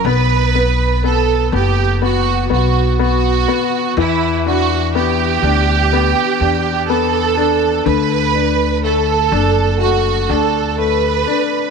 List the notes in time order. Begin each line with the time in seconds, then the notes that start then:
0.05 B1 B3 B4
0.55 B3
1.04 B3 A4
1.52 F#1 B3 G4
2.02 B3 F#4
2.50 B1 B3 F#4
2.99 B3 F#4
3.48 B3
3.97 E2 E3 E4
4.46 D4 F#4
4.95 B3 G4
5.43 D2 D4
5.93 B3
6.40 E2 D4
6.89 B3 A4
7.37 D4
7.86 D2 D3 B4
8.35 D4
8.84 A3 A4
9.32 F#1 D4
9.80 A3 F#4
10.29 D2 D4 A4
10.78 A3 B4
11.27 D4